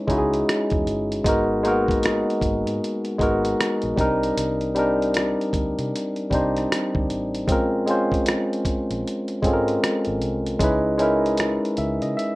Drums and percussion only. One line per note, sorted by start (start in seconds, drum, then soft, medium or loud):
0.08 kick medium
0.08 closed hi-hat soft
0.34 closed hi-hat soft
0.49 cross-stick medium
0.49 closed hi-hat medium
0.70 kick medium
0.70 closed hi-hat soft
0.87 closed hi-hat soft
1.12 closed hi-hat soft
1.24 kick loud
1.24 closed hi-hat medium
1.65 closed hi-hat medium
1.88 kick medium
1.88 closed hi-hat soft
2.03 cross-stick loud
2.03 closed hi-hat medium
2.30 closed hi-hat soft
2.41 kick medium
2.41 closed hi-hat medium
2.67 closed hi-hat soft
2.84 closed hi-hat medium
3.05 closed hi-hat soft
3.19 kick medium
3.19 closed hi-hat soft
3.45 closed hi-hat soft
3.61 cross-stick loud
3.61 closed hi-hat medium
3.82 closed hi-hat soft
3.98 kick medium
3.98 closed hi-hat soft
4.23 closed hi-hat soft
4.38 closed hi-hat medium
4.61 closed hi-hat soft
4.76 closed hi-hat medium
5.02 closed hi-hat soft
5.14 cross-stick loud
5.14 closed hi-hat medium
5.41 closed hi-hat soft
5.53 kick medium
5.53 closed hi-hat medium
5.79 closed hi-hat soft
5.96 closed hi-hat medium
6.16 closed hi-hat soft
6.31 kick medium
6.31 closed hi-hat medium
6.57 cross-stick soft
6.57 closed hi-hat soft
6.72 cross-stick loud
6.72 closed hi-hat medium
6.95 kick medium
7.10 closed hi-hat soft
7.35 closed hi-hat soft
7.48 kick loud
7.48 closed hi-hat medium
7.88 closed hi-hat medium
8.12 kick medium
8.12 closed hi-hat soft
8.26 cross-stick loud
8.26 closed hi-hat medium
8.53 closed hi-hat soft
8.65 kick medium
8.65 closed hi-hat medium
8.91 closed hi-hat soft
9.08 closed hi-hat medium
9.28 closed hi-hat soft
9.43 kick medium
9.43 closed hi-hat soft
9.68 closed hi-hat soft
9.84 cross-stick medium
9.84 closed hi-hat medium
10.05 closed hi-hat soft
10.22 closed hi-hat soft
10.46 closed hi-hat soft
10.60 kick loud
10.60 closed hi-hat medium
10.99 closed hi-hat medium
11.26 closed hi-hat soft
11.37 cross-stick medium
11.37 closed hi-hat medium
11.65 closed hi-hat soft
11.77 closed hi-hat medium
12.02 closed hi-hat soft
12.19 closed hi-hat medium